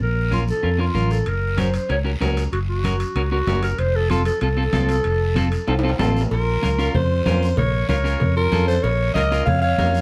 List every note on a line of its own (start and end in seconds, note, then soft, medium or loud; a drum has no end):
0.00 0.51 A#1 medium
0.00 0.31 A#4 medium
0.00 high conga soft
0.00 long guiro medium
0.31 0.43 C#4 medium
0.31 0.43 F4 medium
0.31 0.40 F4 medium
0.31 0.43 A#4 medium
0.31 high conga medium
0.31 short guiro medium
0.48 0.82 A4 medium
0.48 short guiro medium
0.63 0.89 F2 medium
0.63 0.69 C#4 medium
0.63 0.69 F4 medium
0.63 0.69 A#4 medium
0.63 high conga soft
0.63 long guiro medium
0.78 0.84 C#4 medium
0.78 0.84 F4 medium
0.78 1.13 F4 medium
0.78 0.85 A#4 medium
0.94 1.20 A1 medium
0.94 1.17 C#4 medium
0.94 1.17 F4 medium
0.94 1.17 A#4 medium
0.94 high conga medium
0.94 short guiro medium
1.11 1.29 A4 medium
1.11 short guiro medium
1.26 1.77 F#1 medium
1.26 1.61 A#4 medium
1.26 high conga soft
1.26 high timbale medium
1.26 long guiro medium
1.57 1.69 C#4 medium
1.57 1.69 F#4 medium
1.57 1.69 A#4 medium
1.57 1.75 C5 medium
1.57 high conga medium
1.57 high timbale medium
1.57 short guiro medium
1.74 1.89 C5 medium
1.74 high timbale medium
1.74 short guiro medium
1.89 2.15 C#2 medium
1.89 1.95 C#4 medium
1.89 1.95 F#4 soft
1.89 1.95 A#4 medium
1.89 1.98 C#5 medium
1.89 high conga soft
1.89 high timbale medium
1.89 long guiro medium
2.04 2.10 C#4 medium
2.04 2.11 F#4 medium
2.04 2.11 A#4 medium
2.21 2.46 C#2 medium
2.21 2.43 C#4 medium
2.21 2.43 F#4 medium
2.21 2.43 A#4 loud
2.21 high conga medium
2.21 high timbale medium
2.21 low timbale medium
2.21 short guiro medium
2.37 high timbale medium
2.37 short guiro medium
2.52 3.03 F#1 medium
2.52 2.60 F#4 medium
2.52 high conga soft
2.52 high timbale medium
2.52 long guiro medium
2.69 3.28 F#4 medium
2.84 2.95 C#4 medium
2.84 2.95 F#4 medium
2.84 2.96 A#4 medium
2.84 high conga medium
2.84 high timbale medium
2.84 short guiro medium
3.00 high timbale medium
3.00 short guiro medium
3.15 3.41 C#2 medium
3.15 3.21 C#4 medium
3.15 3.21 F#4 medium
3.15 3.21 A#4 medium
3.15 high conga soft
3.15 high timbale medium
3.15 long guiro medium
3.31 3.37 C#4 medium
3.31 3.61 F#4 loud
3.31 3.37 F#4 medium
3.31 3.37 A#4 medium
3.47 3.72 F#1 medium
3.47 3.69 C#4 medium
3.47 3.70 F#4 medium
3.47 3.70 A#4 medium
3.47 high conga medium
3.47 high timbale medium
3.47 low timbale medium
3.47 short guiro medium
3.63 3.80 A#4 medium
3.63 high timbale medium
3.63 short guiro medium
3.78 4.29 F1 medium
3.78 3.97 C5 loud
3.78 high conga soft
3.78 high timbale medium
3.78 long guiro medium
3.95 4.12 A4 loud
4.10 4.21 C4 medium
4.10 4.25 F4 medium
4.10 4.21 F4 medium
4.10 4.22 A4 medium
4.10 high conga medium
4.10 high timbale medium
4.10 short guiro medium
4.25 4.41 A4 loud
4.25 high timbale medium
4.25 short guiro medium
4.41 4.67 C2 medium
4.41 4.47 C4 medium
4.41 4.47 F4 medium
4.41 5.96 A4 loud
4.41 4.48 A4 medium
4.41 high timbale medium
4.41 long guiro medium
4.57 4.63 C4 medium
4.57 4.63 F4 medium
4.57 4.63 A4 medium
4.73 4.99 C2 loud
4.73 4.95 C4 medium
4.73 4.95 F4 medium
4.73 4.96 A4 medium
4.73 high conga medium
4.73 high timbale medium
4.73 low timbale medium
4.73 short guiro medium
4.89 high timbale medium
4.89 short guiro medium
5.04 5.55 F1 medium
5.04 high conga soft
5.04 high timbale medium
5.04 long guiro medium
5.35 5.47 C4 medium
5.35 5.47 F4 medium
5.35 5.48 A4 medium
5.35 high conga medium
5.35 high timbale medium
5.35 short guiro medium
5.52 high timbale medium
5.52 short guiro medium
5.67 5.93 C2 medium
5.67 5.73 C4 medium
5.67 5.74 F4 medium
5.67 5.74 A4 medium
5.67 high conga soft
5.67 high timbale medium
5.67 long guiro medium
5.79 high timbale medium
5.83 5.89 C4 medium
5.83 5.89 F4 medium
5.83 5.90 A4 medium
5.89 high timbale medium
5.99 6.25 A1 medium
5.99 6.21 C4 medium
5.99 6.21 F4 medium
5.99 6.22 A4 medium
5.99 high conga medium
5.99 low timbale loud
5.99 short guiro medium
6.17 short guiro medium
6.21 low timbale medium
6.31 6.57 A#1 medium
6.31 6.90 F4 medium
6.31 6.91 A#4 medium
6.31 cowbell loud
6.31 high conga soft
6.31 long guiro medium
6.62 6.88 C#2 medium
6.62 6.68 C#4 medium
6.62 6.68 F4 medium
6.62 6.69 A#4 medium
6.62 cowbell medium
6.62 high conga medium
6.62 short guiro medium
6.78 6.95 C#4 medium
6.78 6.95 F4 medium
6.78 6.96 A#4 medium
6.78 short guiro medium
6.94 7.20 F2 medium
6.94 7.54 F4 medium
6.94 7.54 C5 medium
6.94 cowbell medium
6.94 high conga soft
6.94 low conga medium
6.94 long guiro medium
7.26 7.52 F2 medium
7.26 7.48 C#4 medium
7.26 7.48 F4 medium
7.26 7.48 A#4 medium
7.26 cowbell medium
7.26 high conga medium
7.26 low timbale medium
7.26 short guiro medium
7.43 short guiro medium
7.57 7.83 A#1 medium
7.57 7.87 A#4 medium
7.57 7.87 C#5 loud
7.57 cowbell loud
7.57 high conga soft
7.57 low conga medium
7.57 long guiro medium
7.89 8.14 C#2 medium
7.89 7.95 C#4 medium
7.89 7.95 F4 medium
7.89 8.33 A#4 medium
7.89 7.95 A#4 medium
7.89 8.33 C#5 medium
7.89 cowbell medium
7.89 high conga medium
7.89 short guiro medium
8.04 8.21 C#4 medium
8.04 8.21 F4 medium
8.04 8.22 A#4 medium
8.04 short guiro medium
8.20 8.46 F2 medium
8.20 cowbell medium
8.20 high conga soft
8.20 low conga medium
8.20 long guiro medium
8.36 8.66 F4 medium
8.36 8.66 A#4 loud
8.52 8.78 F2 medium
8.52 8.74 C#4 medium
8.52 8.74 F4 medium
8.52 8.75 A4 medium
8.52 cowbell medium
8.52 high conga medium
8.52 short guiro medium
8.67 8.85 A4 medium
8.67 8.84 C5 loud
8.67 short guiro medium
8.83 9.09 A#1 loud
8.83 9.15 A#4 medium
8.83 9.13 C#5 loud
8.83 cowbell loud
8.83 high conga soft
8.83 long guiro medium
9.14 9.41 C#2 medium
9.14 9.21 C#4 medium
9.14 9.21 F4 medium
9.14 9.45 A#4 medium
9.14 9.21 A#4 medium
9.14 9.44 D#5 loud
9.14 cowbell medium
9.14 high conga medium
9.14 short guiro medium
9.31 9.48 C#4 medium
9.31 9.48 F4 medium
9.31 9.48 A#4 medium
9.31 short guiro medium
9.46 9.73 F2 medium
9.46 9.62 C#5 medium
9.46 9.61 F5 loud
9.46 cowbell medium
9.46 high conga soft
9.46 low conga medium
9.46 long guiro medium
9.61 10.01 C#5 loud
9.61 10.01 F5 loud
9.78 10.01 F2 medium
9.78 10.01 C#4 medium
9.78 10.01 F4 medium
9.78 10.01 A#4 medium
9.78 cowbell medium
9.78 high conga medium
9.78 low timbale medium
9.78 short guiro medium
9.95 short guiro medium